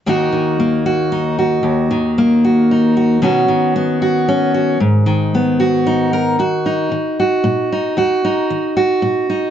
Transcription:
\new Staff \with { instrumentName = "Steel-string acoustic guitar" } { \time 3/4 \key ees \minor \tempo 4 = 114 << { <ees bes ees' ges'>4 bes8 ges'8 ees'8 ges'8 | r4 bes8 ges'8 ees'8 ges'8 | <dis b cis' fis'>4 b8 fis'8 cis'8 fis'8 | r4 ces'8 ges'8 ees'8 bes'8 |
ges'8 ees'4 ges'4 ees'8 | ges'8 ees'4 ges'4 ees'8 | } \\ { ees,8 ees2~ ees8 | ees,8 ees2~ ees8 | b,8 dis2~ dis8 | aes,8 ees2~ ees8 |
ees,4 ees4 bes,4 | ees,4 ees4 bes,4 | } >> }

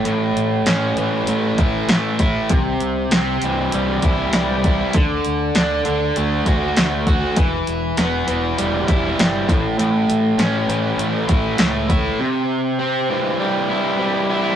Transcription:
<<
  \new Staff \with { instrumentName = "Distorted electric guitar" } { \time 4/4 \key a \dorian \tempo 4 = 99 a,4 cis'8 e8 a8 e'8 a8 e'8 | c4 c'8 e8 g8 e'8 g8 e'8 | d4 d'8 d8 a8 fis'8 a8 fis'8 | e4 b8 e8 g8 e'8 g8 a,8 |
a,4 cis'8 e8 a8 e'8 a8 e'8 | c4 c'8 e8 g8 e'8 g8 e'8 | }
  \new Staff \with { instrumentName = "Fingered electric bass" } { \clef bass \time 4/4 \key a \dorian a,,8 a,,8 a,,8 a,,8 a,,8 a,,8 a,,4 | c,8 c,8 c,8 c,8 c,8 c,8 c,4 | d,8 d,8 d,8 d,8 d,8 d,8 d,4 | e,,8 e,,8 e,,8 e,,8 e,,8 e,,8 g,,8 a,,8 |
a,,8 a,,8 a,,8 a,,8 a,,8 a,,8 cis,4 | r1 | }
  \new DrumStaff \with { instrumentName = "Drums" } \drummode { \time 4/4 hh8 hh8 <hh sn>8 hh8 hh8 <hh bd>8 <hh sn>8 <hh bd sn>8 | <hh bd>8 hh8 <hh sn>8 hh8 hh8 <hh bd>8 <hh sn>8 <hh bd>8 | <hh bd>8 hh8 <hh sn>8 hh8 hh8 <hh bd>8 <hh sn>8 <hh bd>8 | <hh bd>8 hh8 <hh sn>8 hh8 hh8 <hh bd>8 <hh sn>8 <hh bd sn>8 |
hh8 hh8 <hh sn>8 hh8 hh8 <hh bd>8 <hh sn>8 <hh bd>8 | r4 r4 r4 r4 | }
>>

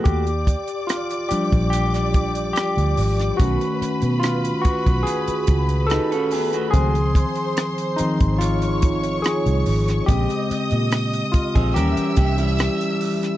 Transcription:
<<
  \new Staff \with { instrumentName = "String section" } { \time 4/4 \key ees \mixolydian \tempo 4 = 72 <d'' d'''>1 | <b' b''>1 | <c'' c'''>2 <des'' des'''>2 | <ees'' ees'''>2 <fes'' fes'''>2 | }
  \new Staff \with { instrumentName = "Clean electric guitar" } { \time 4/4 \key ees \mixolydian <a fis'>16 r2. r8. | r2. <dis' b'>16 <cis' a'>16 <b aes'>16 <a fis'>16~ | <a fis'>16 r2. r8. | r4. r16 <c' aes'>16 <des' bes'>8 <bes g'>16 <g fes'>4~ <g fes'>16 | }
  \new Staff \with { instrumentName = "Tine electric piano" } { \time 4/4 \key ees \mixolydian g'4 f'8 g'8 g'4 g'4 | fis'4 f'8 fis'8 aes'4 a'8. r16 | aes'4. ees'8 f'4 aes'4 | g'4. f'8 g'4. r8 | }
  \new Staff \with { instrumentName = "Tine electric piano" } { \clef bass \time 4/4 \key ees \mixolydian r4. <f g d'>4. r4 | <dis a cis'>8 r2. r8 | <ees f c'>4. <ees f c'>8 r2 | <des aes c'>2 <fes g des'>4. r8 | }
  \new Staff \with { instrumentName = "Fingered electric bass" } { \clef bass \time 4/4 \key ees \mixolydian ees,8. r4 bes,,4~ bes,,16 r16 d,16 aes,,8 | b,,16 r8 b,8. r16 b,,16 r8 cis,8. r8. | des,8. r4 aes,,4~ aes,,16 r16 c,16 aes,,8 | bes,,16 r8 bes,8. r16 bes,,16 ees,16 r16 c,8. r8. | }
  \new DrumStaff \with { instrumentName = "Drums" } \drummode { \time 4/4 <hh bd>16 hh16 <hh bd>16 hh16 <hh ss>16 hh16 hh16 <hh bd>16 hh16 <hh ss>16 <hh bd>16 hh16 <hh ss>16 hh16 hho16 <hh ss>16 | <hh bd>16 hh16 hh16 hh16 <hh ss>16 hh16 <hh bd>16 <hh bd>16 hh16 hh16 <hh bd>16 hh16 <hh ss>16 hh16 hho16 hh16 | <hh bd>16 hh16 <hh bd>16 hh16 <hh ss>16 hh16 hh16 <hh bd>16 hh16 hh16 <hh bd>16 hh16 <hh ss>16 hh16 hho16 <hh ss>16 | <hh bd>16 hh16 hh16 hh16 <hh ss>16 hh16 <hh bd>16 <hh bd>16 hh16 hh16 <hh bd>16 hh16 <hh ss>16 hh16 hho16 <hh ss>16 | }
>>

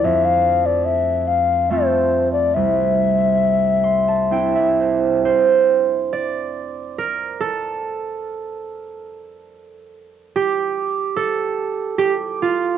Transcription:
<<
  \new Staff \with { instrumentName = "Flute" } { \time 3/4 \key c \major \tempo 4 = 71 e''16 f''8 d''16 e''8 f''8 c''8. d''16 | e''2~ e''8 r8 | r2. | r2. |
r2. | }
  \new Staff \with { instrumentName = "Harp" } { \time 3/4 \key c \major << { r2. | r4. c'''16 a''16 g''16 e''16 c''8 | c''4 d''4 bes'8 a'8~ | a'2~ a'8 r8 |
g'4 a'4 g'8 f'8 | } \\ { f,2 <a c' f'>4 | c,2 <c' d' e'>4 | r2. | r2. |
r2. | } >> }
>>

